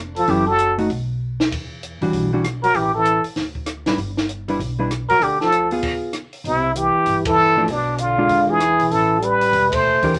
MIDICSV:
0, 0, Header, 1, 7, 480
1, 0, Start_track
1, 0, Key_signature, 1, "major"
1, 0, Tempo, 308325
1, 442, Time_signature, 4, 2, 24, 8
1, 10048, Key_signature, 0, "major"
1, 15868, End_track
2, 0, Start_track
2, 0, Title_t, "Muted trumpet"
2, 0, Program_c, 0, 59
2, 265, Note_on_c, 0, 69, 72
2, 466, Note_on_c, 0, 67, 63
2, 489, Note_off_c, 0, 69, 0
2, 722, Note_off_c, 0, 67, 0
2, 731, Note_on_c, 0, 69, 84
2, 1182, Note_off_c, 0, 69, 0
2, 4104, Note_on_c, 0, 70, 88
2, 4293, Note_on_c, 0, 67, 74
2, 4316, Note_off_c, 0, 70, 0
2, 4576, Note_off_c, 0, 67, 0
2, 4586, Note_on_c, 0, 69, 77
2, 5031, Note_off_c, 0, 69, 0
2, 7929, Note_on_c, 0, 70, 100
2, 8147, Note_on_c, 0, 67, 77
2, 8170, Note_off_c, 0, 70, 0
2, 8413, Note_off_c, 0, 67, 0
2, 8422, Note_on_c, 0, 69, 84
2, 8870, Note_off_c, 0, 69, 0
2, 10063, Note_on_c, 0, 64, 68
2, 10540, Note_on_c, 0, 67, 68
2, 10563, Note_off_c, 0, 64, 0
2, 11308, Note_off_c, 0, 67, 0
2, 11317, Note_on_c, 0, 69, 100
2, 12009, Note_on_c, 0, 62, 59
2, 12032, Note_off_c, 0, 69, 0
2, 12456, Note_on_c, 0, 65, 72
2, 12480, Note_off_c, 0, 62, 0
2, 13230, Note_on_c, 0, 68, 91
2, 13253, Note_off_c, 0, 65, 0
2, 13882, Note_on_c, 0, 69, 74
2, 13905, Note_off_c, 0, 68, 0
2, 14389, Note_on_c, 0, 71, 80
2, 14412, Note_off_c, 0, 69, 0
2, 15159, Note_on_c, 0, 72, 83
2, 15182, Note_off_c, 0, 71, 0
2, 15811, Note_off_c, 0, 72, 0
2, 15868, End_track
3, 0, Start_track
3, 0, Title_t, "Hollow-body jazz guitar"
3, 0, Program_c, 1, 26
3, 433, Note_on_c, 1, 61, 62
3, 435, Note_on_c, 1, 54, 57
3, 447, Note_on_c, 1, 64, 59
3, 455, Note_on_c, 1, 69, 65
3, 705, Note_off_c, 1, 61, 0
3, 706, Note_off_c, 1, 54, 0
3, 713, Note_off_c, 1, 64, 0
3, 716, Note_off_c, 1, 69, 0
3, 1214, Note_on_c, 1, 57, 58
3, 1224, Note_on_c, 1, 63, 62
3, 1228, Note_on_c, 1, 66, 67
3, 1381, Note_off_c, 1, 57, 0
3, 1386, Note_off_c, 1, 63, 0
3, 1388, Note_off_c, 1, 66, 0
3, 3143, Note_on_c, 1, 52, 60
3, 3145, Note_on_c, 1, 55, 64
3, 3151, Note_on_c, 1, 62, 61
3, 3157, Note_on_c, 1, 66, 64
3, 3592, Note_off_c, 1, 52, 0
3, 3594, Note_off_c, 1, 55, 0
3, 3597, Note_off_c, 1, 62, 0
3, 3600, Note_off_c, 1, 66, 0
3, 3625, Note_on_c, 1, 52, 57
3, 3633, Note_on_c, 1, 55, 54
3, 3637, Note_on_c, 1, 62, 64
3, 3644, Note_on_c, 1, 66, 63
3, 3788, Note_off_c, 1, 52, 0
3, 3791, Note_off_c, 1, 55, 0
3, 3794, Note_off_c, 1, 62, 0
3, 3797, Note_off_c, 1, 66, 0
3, 6029, Note_on_c, 1, 55, 65
3, 6034, Note_on_c, 1, 62, 63
3, 6035, Note_on_c, 1, 64, 60
3, 6043, Note_on_c, 1, 71, 66
3, 6190, Note_off_c, 1, 55, 0
3, 6193, Note_off_c, 1, 62, 0
3, 6194, Note_off_c, 1, 64, 0
3, 6197, Note_off_c, 1, 71, 0
3, 6978, Note_on_c, 1, 55, 54
3, 6990, Note_on_c, 1, 62, 59
3, 6999, Note_on_c, 1, 71, 61
3, 7002, Note_on_c, 1, 64, 61
3, 7145, Note_off_c, 1, 55, 0
3, 7152, Note_off_c, 1, 62, 0
3, 7156, Note_off_c, 1, 71, 0
3, 7158, Note_off_c, 1, 64, 0
3, 7453, Note_on_c, 1, 55, 53
3, 7463, Note_on_c, 1, 62, 53
3, 7463, Note_on_c, 1, 64, 55
3, 7472, Note_on_c, 1, 71, 55
3, 7623, Note_off_c, 1, 55, 0
3, 7628, Note_off_c, 1, 62, 0
3, 7628, Note_off_c, 1, 64, 0
3, 7633, Note_off_c, 1, 71, 0
3, 8904, Note_on_c, 1, 59, 59
3, 8910, Note_on_c, 1, 65, 61
3, 8917, Note_on_c, 1, 68, 62
3, 9531, Note_off_c, 1, 59, 0
3, 9534, Note_off_c, 1, 65, 0
3, 9537, Note_off_c, 1, 68, 0
3, 11779, Note_on_c, 1, 53, 67
3, 11787, Note_on_c, 1, 57, 64
3, 11795, Note_on_c, 1, 62, 70
3, 11945, Note_off_c, 1, 53, 0
3, 11950, Note_off_c, 1, 57, 0
3, 11954, Note_off_c, 1, 62, 0
3, 12736, Note_on_c, 1, 56, 66
3, 12740, Note_on_c, 1, 62, 76
3, 12748, Note_on_c, 1, 65, 86
3, 13365, Note_off_c, 1, 56, 0
3, 13367, Note_off_c, 1, 62, 0
3, 13371, Note_off_c, 1, 65, 0
3, 15614, Note_on_c, 1, 52, 67
3, 15627, Note_on_c, 1, 62, 65
3, 15630, Note_on_c, 1, 67, 65
3, 15635, Note_on_c, 1, 70, 74
3, 15781, Note_off_c, 1, 52, 0
3, 15788, Note_off_c, 1, 62, 0
3, 15789, Note_off_c, 1, 67, 0
3, 15792, Note_off_c, 1, 70, 0
3, 15868, End_track
4, 0, Start_track
4, 0, Title_t, "Trombone"
4, 0, Program_c, 2, 57
4, 272, Note_on_c, 2, 53, 70
4, 448, Note_on_c, 2, 52, 62
4, 472, Note_off_c, 2, 53, 0
4, 732, Note_off_c, 2, 52, 0
4, 742, Note_on_c, 2, 54, 67
4, 1187, Note_off_c, 2, 54, 0
4, 4101, Note_on_c, 2, 54, 84
4, 4315, Note_on_c, 2, 52, 66
4, 4338, Note_off_c, 2, 54, 0
4, 4579, Note_off_c, 2, 52, 0
4, 4588, Note_on_c, 2, 52, 60
4, 5032, Note_off_c, 2, 52, 0
4, 7949, Note_on_c, 2, 54, 90
4, 8126, Note_on_c, 2, 50, 69
4, 8150, Note_off_c, 2, 54, 0
4, 8416, Note_off_c, 2, 50, 0
4, 8426, Note_on_c, 2, 53, 68
4, 8872, Note_off_c, 2, 53, 0
4, 10068, Note_on_c, 2, 48, 63
4, 10532, Note_on_c, 2, 52, 62
4, 10555, Note_off_c, 2, 48, 0
4, 11297, Note_off_c, 2, 52, 0
4, 11306, Note_on_c, 2, 52, 83
4, 11972, Note_on_c, 2, 47, 51
4, 11995, Note_off_c, 2, 52, 0
4, 12454, Note_on_c, 2, 50, 63
4, 12477, Note_off_c, 2, 47, 0
4, 13210, Note_on_c, 2, 52, 76
4, 13234, Note_off_c, 2, 50, 0
4, 13873, Note_off_c, 2, 52, 0
4, 13873, Note_on_c, 2, 52, 65
4, 14332, Note_on_c, 2, 55, 67
4, 14355, Note_off_c, 2, 52, 0
4, 15124, Note_on_c, 2, 57, 78
4, 15147, Note_off_c, 2, 55, 0
4, 15794, Note_off_c, 2, 57, 0
4, 15868, End_track
5, 0, Start_track
5, 0, Title_t, "Upright bass"
5, 0, Program_c, 3, 32
5, 0, Note_on_c, 3, 29, 84
5, 381, Note_off_c, 3, 29, 0
5, 431, Note_on_c, 3, 30, 77
5, 1349, Note_off_c, 3, 30, 0
5, 1394, Note_on_c, 3, 35, 86
5, 2311, Note_off_c, 3, 35, 0
5, 2358, Note_on_c, 3, 40, 80
5, 3084, Note_off_c, 3, 40, 0
5, 3132, Note_on_c, 3, 38, 70
5, 3306, Note_off_c, 3, 38, 0
5, 3317, Note_on_c, 3, 35, 81
5, 4233, Note_off_c, 3, 35, 0
5, 4274, Note_on_c, 3, 33, 81
5, 5003, Note_off_c, 3, 33, 0
5, 5233, Note_on_c, 3, 38, 84
5, 5963, Note_off_c, 3, 38, 0
5, 6024, Note_on_c, 3, 32, 61
5, 6182, Note_off_c, 3, 32, 0
5, 6192, Note_on_c, 3, 31, 82
5, 7111, Note_off_c, 3, 31, 0
5, 7150, Note_on_c, 3, 35, 89
5, 7882, Note_off_c, 3, 35, 0
5, 7939, Note_on_c, 3, 36, 64
5, 8103, Note_off_c, 3, 36, 0
5, 8112, Note_on_c, 3, 38, 87
5, 9032, Note_off_c, 3, 38, 0
5, 10028, Note_on_c, 3, 36, 83
5, 10760, Note_off_c, 3, 36, 0
5, 10994, Note_on_c, 3, 31, 88
5, 11912, Note_off_c, 3, 31, 0
5, 11951, Note_on_c, 3, 35, 86
5, 12870, Note_off_c, 3, 35, 0
5, 12900, Note_on_c, 3, 40, 87
5, 13634, Note_off_c, 3, 40, 0
5, 13692, Note_on_c, 3, 35, 67
5, 13858, Note_off_c, 3, 35, 0
5, 13868, Note_on_c, 3, 33, 84
5, 14787, Note_off_c, 3, 33, 0
5, 14826, Note_on_c, 3, 28, 88
5, 15557, Note_off_c, 3, 28, 0
5, 15798, Note_on_c, 3, 28, 83
5, 15868, Note_off_c, 3, 28, 0
5, 15868, End_track
6, 0, Start_track
6, 0, Title_t, "Muted upright bass strokes"
6, 5047, Note_on_c, 9, 29, 36
6, 5203, Note_off_c, 9, 29, 0
6, 15611, Note_on_c, 9, 29, 38
6, 15767, Note_off_c, 9, 29, 0
6, 15868, End_track
7, 0, Start_track
7, 0, Title_t, "Drums"
7, 253, Note_on_c, 9, 46, 35
7, 409, Note_off_c, 9, 46, 0
7, 429, Note_on_c, 9, 46, 39
7, 585, Note_off_c, 9, 46, 0
7, 910, Note_on_c, 9, 42, 43
7, 1066, Note_off_c, 9, 42, 0
7, 1221, Note_on_c, 9, 46, 34
7, 1376, Note_off_c, 9, 46, 0
7, 1399, Note_on_c, 9, 46, 38
7, 1554, Note_off_c, 9, 46, 0
7, 2180, Note_on_c, 9, 38, 55
7, 2336, Note_off_c, 9, 38, 0
7, 2360, Note_on_c, 9, 36, 60
7, 2369, Note_on_c, 9, 51, 58
7, 2516, Note_off_c, 9, 36, 0
7, 2525, Note_off_c, 9, 51, 0
7, 2848, Note_on_c, 9, 42, 43
7, 3004, Note_off_c, 9, 42, 0
7, 3137, Note_on_c, 9, 46, 35
7, 3293, Note_off_c, 9, 46, 0
7, 3318, Note_on_c, 9, 46, 38
7, 3473, Note_off_c, 9, 46, 0
7, 3804, Note_on_c, 9, 42, 47
7, 3805, Note_on_c, 9, 37, 57
7, 3959, Note_off_c, 9, 42, 0
7, 3961, Note_off_c, 9, 37, 0
7, 4104, Note_on_c, 9, 46, 35
7, 4259, Note_off_c, 9, 46, 0
7, 4274, Note_on_c, 9, 46, 41
7, 4430, Note_off_c, 9, 46, 0
7, 4754, Note_on_c, 9, 42, 40
7, 4910, Note_off_c, 9, 42, 0
7, 5046, Note_on_c, 9, 46, 35
7, 5201, Note_off_c, 9, 46, 0
7, 5229, Note_on_c, 9, 46, 38
7, 5231, Note_on_c, 9, 38, 33
7, 5385, Note_off_c, 9, 46, 0
7, 5387, Note_off_c, 9, 38, 0
7, 5528, Note_on_c, 9, 36, 45
7, 5683, Note_off_c, 9, 36, 0
7, 5701, Note_on_c, 9, 42, 50
7, 5703, Note_on_c, 9, 37, 56
7, 5857, Note_off_c, 9, 42, 0
7, 5859, Note_off_c, 9, 37, 0
7, 6010, Note_on_c, 9, 46, 33
7, 6011, Note_on_c, 9, 38, 48
7, 6165, Note_off_c, 9, 46, 0
7, 6167, Note_off_c, 9, 38, 0
7, 6195, Note_on_c, 9, 46, 37
7, 6350, Note_off_c, 9, 46, 0
7, 6498, Note_on_c, 9, 38, 44
7, 6653, Note_off_c, 9, 38, 0
7, 6678, Note_on_c, 9, 42, 41
7, 6834, Note_off_c, 9, 42, 0
7, 6979, Note_on_c, 9, 46, 32
7, 7135, Note_off_c, 9, 46, 0
7, 7165, Note_on_c, 9, 46, 38
7, 7321, Note_off_c, 9, 46, 0
7, 7640, Note_on_c, 9, 42, 46
7, 7641, Note_on_c, 9, 37, 60
7, 7795, Note_off_c, 9, 42, 0
7, 7797, Note_off_c, 9, 37, 0
7, 7931, Note_on_c, 9, 46, 37
7, 8087, Note_off_c, 9, 46, 0
7, 8119, Note_on_c, 9, 46, 40
7, 8274, Note_off_c, 9, 46, 0
7, 8420, Note_on_c, 9, 38, 30
7, 8576, Note_off_c, 9, 38, 0
7, 8598, Note_on_c, 9, 42, 44
7, 8754, Note_off_c, 9, 42, 0
7, 8888, Note_on_c, 9, 46, 35
7, 9043, Note_off_c, 9, 46, 0
7, 9069, Note_on_c, 9, 46, 36
7, 9071, Note_on_c, 9, 49, 60
7, 9075, Note_on_c, 9, 36, 75
7, 9225, Note_off_c, 9, 46, 0
7, 9227, Note_off_c, 9, 49, 0
7, 9231, Note_off_c, 9, 36, 0
7, 9544, Note_on_c, 9, 42, 48
7, 9546, Note_on_c, 9, 37, 53
7, 9700, Note_off_c, 9, 42, 0
7, 9701, Note_off_c, 9, 37, 0
7, 9850, Note_on_c, 9, 46, 34
7, 10005, Note_off_c, 9, 46, 0
7, 10043, Note_on_c, 9, 46, 42
7, 10199, Note_off_c, 9, 46, 0
7, 10517, Note_on_c, 9, 42, 49
7, 10673, Note_off_c, 9, 42, 0
7, 10988, Note_on_c, 9, 46, 43
7, 11143, Note_off_c, 9, 46, 0
7, 11292, Note_on_c, 9, 51, 76
7, 11293, Note_on_c, 9, 36, 78
7, 11448, Note_off_c, 9, 51, 0
7, 11449, Note_off_c, 9, 36, 0
7, 11952, Note_on_c, 9, 46, 47
7, 12108, Note_off_c, 9, 46, 0
7, 12428, Note_on_c, 9, 42, 47
7, 12584, Note_off_c, 9, 42, 0
7, 12909, Note_on_c, 9, 46, 41
7, 13065, Note_off_c, 9, 46, 0
7, 13392, Note_on_c, 9, 42, 54
7, 13394, Note_on_c, 9, 37, 62
7, 13548, Note_off_c, 9, 42, 0
7, 13550, Note_off_c, 9, 37, 0
7, 13693, Note_on_c, 9, 46, 37
7, 13848, Note_off_c, 9, 46, 0
7, 13877, Note_on_c, 9, 46, 44
7, 14032, Note_off_c, 9, 46, 0
7, 14359, Note_on_c, 9, 42, 49
7, 14515, Note_off_c, 9, 42, 0
7, 14651, Note_on_c, 9, 46, 39
7, 14807, Note_off_c, 9, 46, 0
7, 14836, Note_on_c, 9, 46, 39
7, 14991, Note_off_c, 9, 46, 0
7, 15133, Note_on_c, 9, 36, 81
7, 15140, Note_on_c, 9, 51, 72
7, 15288, Note_off_c, 9, 36, 0
7, 15295, Note_off_c, 9, 51, 0
7, 15606, Note_on_c, 9, 46, 39
7, 15611, Note_on_c, 9, 36, 58
7, 15761, Note_off_c, 9, 46, 0
7, 15767, Note_off_c, 9, 36, 0
7, 15788, Note_on_c, 9, 46, 45
7, 15868, Note_off_c, 9, 46, 0
7, 15868, End_track
0, 0, End_of_file